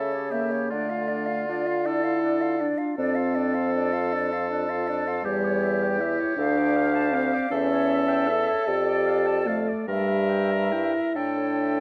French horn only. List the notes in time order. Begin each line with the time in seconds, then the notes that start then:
0.31 A#3
0.71 A3
1.48 F4
1.86 E4
2.61 D4
2.99 C4
5.24 G3
5.99 E4
6.37 D4
7.13 C4
7.51 C#4
8.29 A4
8.68 G4
9.48 A3
9.88 G3
10.73 E4
11.16 D4